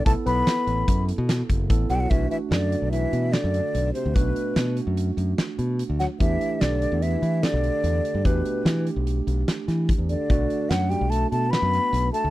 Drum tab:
HH |xxxxxxxxxx|xxxxxxxxxx|xxxxxxxxxx|xxxxxxxxxx|
SD |--o---o---|--o---o---|--o---o--o|--o---o---|
BD |o---o--oo-|o---------|o---------|o---------|

HH |xxxxxxxxxx|xxxxxxxxxx|
SD |--o---oo--|--o---o---|
BD |o-------o-|o---------|